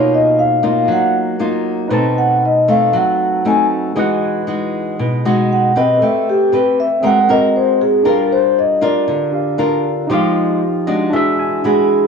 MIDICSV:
0, 0, Header, 1, 4, 480
1, 0, Start_track
1, 0, Tempo, 512383
1, 1787, Time_signature, 4, 2, 24, 8
1, 11307, End_track
2, 0, Start_track
2, 0, Title_t, "Vibraphone"
2, 0, Program_c, 0, 11
2, 0, Note_on_c, 0, 73, 68
2, 118, Note_off_c, 0, 73, 0
2, 134, Note_on_c, 0, 75, 80
2, 355, Note_off_c, 0, 75, 0
2, 366, Note_on_c, 0, 77, 75
2, 804, Note_off_c, 0, 77, 0
2, 860, Note_on_c, 0, 78, 81
2, 1078, Note_off_c, 0, 78, 0
2, 2046, Note_on_c, 0, 78, 87
2, 2269, Note_off_c, 0, 78, 0
2, 2299, Note_on_c, 0, 75, 71
2, 2516, Note_off_c, 0, 75, 0
2, 2527, Note_on_c, 0, 77, 77
2, 2750, Note_off_c, 0, 77, 0
2, 2773, Note_on_c, 0, 78, 78
2, 3207, Note_off_c, 0, 78, 0
2, 3258, Note_on_c, 0, 80, 84
2, 3392, Note_off_c, 0, 80, 0
2, 5174, Note_on_c, 0, 78, 75
2, 5392, Note_off_c, 0, 78, 0
2, 5403, Note_on_c, 0, 75, 89
2, 5626, Note_off_c, 0, 75, 0
2, 5657, Note_on_c, 0, 76, 84
2, 5874, Note_off_c, 0, 76, 0
2, 5896, Note_on_c, 0, 67, 76
2, 6113, Note_off_c, 0, 67, 0
2, 6134, Note_on_c, 0, 71, 69
2, 6352, Note_off_c, 0, 71, 0
2, 6369, Note_on_c, 0, 76, 90
2, 6589, Note_off_c, 0, 76, 0
2, 6614, Note_on_c, 0, 78, 91
2, 6832, Note_off_c, 0, 78, 0
2, 6848, Note_on_c, 0, 75, 90
2, 7069, Note_off_c, 0, 75, 0
2, 7084, Note_on_c, 0, 72, 81
2, 7307, Note_off_c, 0, 72, 0
2, 7322, Note_on_c, 0, 68, 85
2, 7546, Note_off_c, 0, 68, 0
2, 7568, Note_on_c, 0, 70, 69
2, 7789, Note_off_c, 0, 70, 0
2, 7801, Note_on_c, 0, 72, 101
2, 8025, Note_off_c, 0, 72, 0
2, 8048, Note_on_c, 0, 75, 85
2, 8269, Note_off_c, 0, 75, 0
2, 8280, Note_on_c, 0, 74, 86
2, 8955, Note_off_c, 0, 74, 0
2, 10922, Note_on_c, 0, 68, 82
2, 11307, Note_off_c, 0, 68, 0
2, 11307, End_track
3, 0, Start_track
3, 0, Title_t, "Tine electric piano"
3, 0, Program_c, 1, 4
3, 0, Note_on_c, 1, 59, 43
3, 0, Note_on_c, 1, 63, 50
3, 0, Note_on_c, 1, 70, 38
3, 0, Note_on_c, 1, 73, 43
3, 0, Note_on_c, 1, 77, 50
3, 42, Control_c, 1, 64, 127
3, 1737, Note_off_c, 1, 63, 0
3, 1744, Note_off_c, 1, 70, 0
3, 1750, Note_off_c, 1, 59, 0
3, 1756, Note_off_c, 1, 73, 0
3, 1759, Note_on_c, 1, 63, 54
3, 1765, Note_off_c, 1, 77, 0
3, 1773, Note_on_c, 1, 71, 47
3, 1791, Note_on_c, 1, 72, 48
3, 1800, Control_c, 1, 64, 0
3, 1813, Note_on_c, 1, 81, 61
3, 1961, Control_c, 1, 64, 127
3, 3654, Note_off_c, 1, 63, 0
3, 3661, Note_off_c, 1, 71, 0
3, 3670, Note_off_c, 1, 72, 0
3, 3681, Note_off_c, 1, 81, 0
3, 3703, Note_on_c, 1, 68, 47
3, 3717, Control_c, 1, 64, 0
3, 3720, Note_on_c, 1, 75, 50
3, 3741, Note_on_c, 1, 78, 66
3, 3875, Control_c, 1, 64, 127
3, 5585, Note_off_c, 1, 68, 0
3, 5594, Note_off_c, 1, 75, 0
3, 5596, Note_on_c, 1, 60, 51
3, 5604, Note_off_c, 1, 78, 0
3, 5613, Note_on_c, 1, 69, 45
3, 5633, Note_on_c, 1, 71, 41
3, 5635, Control_c, 1, 64, 0
3, 5651, Note_on_c, 1, 79, 49
3, 5806, Control_c, 1, 64, 127
3, 6548, Note_off_c, 1, 60, 0
3, 6559, Note_off_c, 1, 69, 0
3, 6559, Note_on_c, 1, 60, 49
3, 6569, Note_off_c, 1, 71, 0
3, 6578, Note_off_c, 1, 79, 0
3, 6578, Note_on_c, 1, 68, 50
3, 6595, Note_on_c, 1, 70, 50
3, 6598, Control_c, 1, 64, 0
3, 6620, Note_on_c, 1, 78, 50
3, 6743, Control_c, 1, 64, 127
3, 7512, Note_off_c, 1, 60, 0
3, 7522, Note_off_c, 1, 68, 0
3, 7522, Note_on_c, 1, 62, 50
3, 7530, Note_off_c, 1, 70, 0
3, 7541, Note_on_c, 1, 67, 43
3, 7543, Note_off_c, 1, 78, 0
3, 7555, Control_c, 1, 64, 0
3, 7557, Note_on_c, 1, 70, 39
3, 7576, Note_on_c, 1, 77, 52
3, 7700, Control_c, 1, 64, 127
3, 8709, Note_off_c, 1, 62, 0
3, 8719, Note_off_c, 1, 67, 0
3, 8726, Note_on_c, 1, 62, 38
3, 8727, Note_off_c, 1, 70, 0
3, 8737, Note_off_c, 1, 77, 0
3, 8738, Note_on_c, 1, 67, 38
3, 8745, Note_on_c, 1, 70, 37
3, 8753, Note_on_c, 1, 77, 43
3, 9433, Note_on_c, 1, 63, 56
3, 9444, Note_off_c, 1, 67, 0
3, 9455, Note_on_c, 1, 67, 52
3, 9456, Note_off_c, 1, 62, 0
3, 9465, Note_off_c, 1, 70, 0
3, 9469, Note_off_c, 1, 77, 0
3, 9478, Control_c, 1, 64, 0
3, 9495, Note_on_c, 1, 77, 62
3, 9647, Control_c, 1, 64, 127
3, 10183, Note_on_c, 1, 75, 55
3, 10391, Note_off_c, 1, 63, 0
3, 10400, Note_on_c, 1, 62, 63
3, 10402, Note_off_c, 1, 67, 0
3, 10408, Note_off_c, 1, 75, 0
3, 10422, Note_on_c, 1, 66, 53
3, 10423, Note_off_c, 1, 77, 0
3, 10429, Note_on_c, 1, 76, 60
3, 10438, Note_on_c, 1, 68, 59
3, 10439, Control_c, 1, 64, 0
3, 10448, Note_off_c, 1, 76, 0
3, 10455, Note_on_c, 1, 76, 67
3, 10628, Control_c, 1, 64, 127
3, 10672, Note_on_c, 1, 80, 52
3, 10894, Note_off_c, 1, 80, 0
3, 10919, Note_on_c, 1, 83, 52
3, 11307, Note_off_c, 1, 62, 0
3, 11307, Note_off_c, 1, 66, 0
3, 11307, Note_off_c, 1, 68, 0
3, 11307, Note_off_c, 1, 76, 0
3, 11307, Note_off_c, 1, 83, 0
3, 11307, End_track
4, 0, Start_track
4, 0, Title_t, "Nylon-string guitar"
4, 0, Program_c, 2, 24
4, 0, Note_on_c, 2, 47, 67
4, 0, Note_on_c, 2, 58, 58
4, 0, Note_on_c, 2, 63, 60
4, 0, Note_on_c, 2, 65, 59
4, 547, Note_off_c, 2, 58, 0
4, 548, Note_off_c, 2, 63, 0
4, 552, Note_off_c, 2, 65, 0
4, 590, Note_on_c, 2, 58, 62
4, 596, Note_on_c, 2, 63, 64
4, 599, Note_on_c, 2, 65, 72
4, 801, Note_off_c, 2, 47, 0
4, 824, Note_on_c, 2, 54, 71
4, 1271, Note_off_c, 2, 58, 0
4, 1272, Note_off_c, 2, 63, 0
4, 1275, Note_off_c, 2, 65, 0
4, 1305, Note_on_c, 2, 58, 50
4, 1309, Note_on_c, 2, 63, 56
4, 1313, Note_on_c, 2, 65, 59
4, 1748, Note_off_c, 2, 58, 0
4, 1749, Note_off_c, 2, 63, 0
4, 1752, Note_off_c, 2, 65, 0
4, 1761, Note_off_c, 2, 54, 0
4, 1783, Note_on_c, 2, 47, 65
4, 1785, Note_on_c, 2, 57, 56
4, 1789, Note_on_c, 2, 63, 66
4, 1790, Note_on_c, 2, 60, 58
4, 2262, Note_off_c, 2, 57, 0
4, 2264, Note_off_c, 2, 60, 0
4, 2265, Note_off_c, 2, 63, 0
4, 2512, Note_on_c, 2, 57, 56
4, 2514, Note_on_c, 2, 60, 54
4, 2517, Note_on_c, 2, 63, 62
4, 2721, Note_off_c, 2, 47, 0
4, 2747, Note_on_c, 2, 54, 81
4, 3191, Note_off_c, 2, 57, 0
4, 3191, Note_off_c, 2, 60, 0
4, 3193, Note_off_c, 2, 63, 0
4, 3232, Note_on_c, 2, 57, 48
4, 3238, Note_on_c, 2, 60, 63
4, 3242, Note_on_c, 2, 63, 57
4, 3670, Note_off_c, 2, 57, 0
4, 3673, Note_off_c, 2, 60, 0
4, 3675, Note_off_c, 2, 63, 0
4, 3682, Note_off_c, 2, 54, 0
4, 3708, Note_on_c, 2, 52, 67
4, 3713, Note_on_c, 2, 56, 49
4, 3715, Note_on_c, 2, 63, 51
4, 3719, Note_on_c, 2, 66, 59
4, 4150, Note_off_c, 2, 63, 0
4, 4151, Note_off_c, 2, 56, 0
4, 4153, Note_off_c, 2, 66, 0
4, 4188, Note_on_c, 2, 56, 57
4, 4191, Note_on_c, 2, 63, 50
4, 4197, Note_on_c, 2, 66, 58
4, 4642, Note_off_c, 2, 52, 0
4, 4676, Note_on_c, 2, 47, 74
4, 4868, Note_off_c, 2, 56, 0
4, 4869, Note_off_c, 2, 63, 0
4, 4870, Note_off_c, 2, 66, 0
4, 4919, Note_on_c, 2, 56, 64
4, 4920, Note_on_c, 2, 63, 61
4, 4925, Note_on_c, 2, 66, 74
4, 5353, Note_off_c, 2, 56, 0
4, 5354, Note_off_c, 2, 63, 0
4, 5355, Note_off_c, 2, 66, 0
4, 5393, Note_on_c, 2, 60, 61
4, 5397, Note_on_c, 2, 67, 54
4, 5404, Note_on_c, 2, 71, 66
4, 5606, Note_off_c, 2, 47, 0
4, 5638, Note_on_c, 2, 57, 72
4, 6070, Note_off_c, 2, 60, 0
4, 6071, Note_off_c, 2, 67, 0
4, 6075, Note_off_c, 2, 71, 0
4, 6110, Note_on_c, 2, 60, 53
4, 6117, Note_on_c, 2, 67, 65
4, 6119, Note_on_c, 2, 71, 54
4, 6430, Note_off_c, 2, 60, 0
4, 6432, Note_off_c, 2, 67, 0
4, 6434, Note_off_c, 2, 71, 0
4, 6567, Note_off_c, 2, 57, 0
4, 6583, Note_on_c, 2, 60, 69
4, 6587, Note_on_c, 2, 56, 73
4, 6589, Note_on_c, 2, 66, 59
4, 6593, Note_on_c, 2, 70, 61
4, 6724, Note_off_c, 2, 60, 0
4, 6726, Note_off_c, 2, 66, 0
4, 6730, Note_off_c, 2, 70, 0
4, 6829, Note_on_c, 2, 60, 66
4, 6833, Note_on_c, 2, 66, 66
4, 6840, Note_on_c, 2, 70, 72
4, 7509, Note_off_c, 2, 60, 0
4, 7509, Note_off_c, 2, 66, 0
4, 7511, Note_off_c, 2, 70, 0
4, 7521, Note_off_c, 2, 56, 0
4, 7542, Note_on_c, 2, 55, 70
4, 7544, Note_on_c, 2, 62, 55
4, 7547, Note_on_c, 2, 65, 58
4, 7547, Note_on_c, 2, 70, 63
4, 8225, Note_off_c, 2, 62, 0
4, 8225, Note_off_c, 2, 65, 0
4, 8227, Note_off_c, 2, 70, 0
4, 8256, Note_on_c, 2, 62, 56
4, 8261, Note_on_c, 2, 65, 63
4, 8267, Note_on_c, 2, 70, 74
4, 8480, Note_off_c, 2, 55, 0
4, 8504, Note_on_c, 2, 50, 75
4, 8942, Note_off_c, 2, 62, 0
4, 8944, Note_off_c, 2, 65, 0
4, 8947, Note_off_c, 2, 70, 0
4, 8977, Note_on_c, 2, 62, 58
4, 8982, Note_on_c, 2, 65, 57
4, 8985, Note_on_c, 2, 70, 68
4, 9423, Note_off_c, 2, 62, 0
4, 9424, Note_off_c, 2, 65, 0
4, 9427, Note_off_c, 2, 70, 0
4, 9441, Note_off_c, 2, 50, 0
4, 9458, Note_on_c, 2, 53, 75
4, 9466, Note_on_c, 2, 56, 59
4, 9471, Note_on_c, 2, 63, 66
4, 9474, Note_on_c, 2, 67, 70
4, 9942, Note_off_c, 2, 56, 0
4, 9942, Note_off_c, 2, 63, 0
4, 9947, Note_off_c, 2, 67, 0
4, 10183, Note_on_c, 2, 56, 64
4, 10186, Note_on_c, 2, 62, 64
4, 10189, Note_on_c, 2, 66, 58
4, 10400, Note_off_c, 2, 53, 0
4, 10426, Note_on_c, 2, 52, 76
4, 10868, Note_off_c, 2, 56, 0
4, 10868, Note_off_c, 2, 62, 0
4, 10871, Note_off_c, 2, 66, 0
4, 10906, Note_on_c, 2, 56, 50
4, 10913, Note_on_c, 2, 66, 66
4, 10914, Note_on_c, 2, 62, 54
4, 11307, Note_off_c, 2, 52, 0
4, 11307, Note_off_c, 2, 56, 0
4, 11307, Note_off_c, 2, 62, 0
4, 11307, Note_off_c, 2, 66, 0
4, 11307, End_track
0, 0, End_of_file